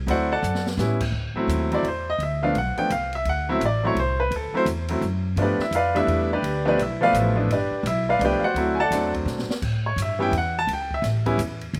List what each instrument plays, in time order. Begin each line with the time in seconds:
0.07 upright bass D2, grand piano F#3 A3 C4 E4 C5 D5, ride
0.11 grand piano F#4 F#5
0.32 grand piano A4 D5 F#5 A5
0.43 upright bass F#2, hi-hat pedal
0.55 snare
0.67 snare
0.77 upright bass A2, grand piano G3 B3 C#4 E4, snare, hi-hat pedal
1.01 kick, crash
1.12 upright bass D2
1.34 grand piano F#3 A3 C4 E4, muted upright bass stroke
1.47 upright bass D#2, hi-hat pedal, ride
1.71 grand piano F#3 A3 C4 E4 D5, ride
1.83 upright bass E2, ride
1.88 grand piano C5
2.10 grand piano D#5
2.18 upright bass D2, ride
2.23 grand piano E5
2.43 grand piano F3 A3 B3 D4 F5
2.54 upright bass B1, grand piano F#5, ride
2.77 grand piano F3 A3 B3 D4 G5, muted upright bass stroke, ride
2.90 upright bass C2, grand piano F5, hi-hat pedal, ride
3.13 grand piano E5, ride
3.25 upright bass D2, ride
3.29 grand piano F#5
3.49 grand piano F#3 A3 C4 E4 E5
3.60 upright bass A1, hi-hat pedal, ride
3.65 grand piano D5
3.83 grand piano F#3 A3 C4 E4 C#5
3.95 upright bass C2, ride
4.00 grand piano C5
4.20 grand piano B4
4.31 upright bass D2, ride
4.36 grand piano A4
4.52 grand piano F#3 A3 C4 E4, muted upright bass stroke
4.57 grand piano C5
4.65 upright bass E2, hi-hat pedal, ride
4.88 grand piano F#3 A3 C4 E4, ride
5.01 upright bass F#2, hi-hat pedal
5.36 upright bass G2, grand piano F3 A3 B3 D4, ride
5.42 grand piano D4 G4 B4 D5
5.59 grand piano E5, muted upright bass stroke, snare
5.63 grand piano E4
5.71 upright bass F2, hi-hat pedal, ride
5.75 grand piano F4 B4 D5 F5
5.95 grand piano G3 A3 B3 D4 E4 E5, ride
6.07 upright bass E2, ride
6.33 grand piano D4 G4 B4 D5
6.42 upright bass D2, ride
6.65 grand piano F3 A3 B3 D4 G4 B4 D5
6.78 upright bass B1, hi-hat pedal, ride
6.82 grand piano E4 E5
7.01 grand piano F3 A3 B3 F4 B4 D5 F5
7.13 upright bass A1, hi-hat pedal, ride
7.17 grand piano E4 E5
7.36 grand piano F3 A3 B3 D4
7.49 upright bass G1, grand piano D5, ride
7.53 grand piano D4 G4 B4
7.71 muted upright bass stroke
7.83 upright bass B1, grand piano E5, hi-hat pedal, ride
7.88 grand piano E4
8.09 grand piano F4 B4 D5 F5
8.19 upright bass C2, grand piano F3 A3 B3 D4, ride
8.24 grand piano G4 B4 D5 G5
8.39 grand piano F5, muted upright bass stroke
8.44 grand piano F#4 C5 D5 F#5
8.54 upright bass D2, grand piano F#3 A3 C4 E4, ride
8.75 grand piano G#5
8.80 grand piano A4 D5 F#5 A5
8.91 upright bass E2, grand piano F#3 A3 C4 D4, snare, hi-hat pedal, ride
9.14 kick, ride
9.25 upright bass B2, snare, hi-hat pedal
9.39 snare
9.47 muted upright bass stroke, snare
9.62 upright bass A2, kick, crash
9.86 grand piano C#5
9.96 upright bass G2, hi-hat pedal, ride
10.02 grand piano E5
10.19 grand piano G3 B3 C#4 E4 G5
10.31 upright bass E2, ride
10.38 grand piano F#5
10.59 grand piano A5
10.67 upright bass C#2, ride
10.73 grand piano G5
10.91 grand piano E5, kick
11.02 upright bass A1, snare, hi-hat pedal, ride
11.26 grand piano G3 B3 C#4 E4, kick, ride
11.38 upright bass E2, hi-hat pedal, ride
11.61 ride
11.73 upright bass D2, ride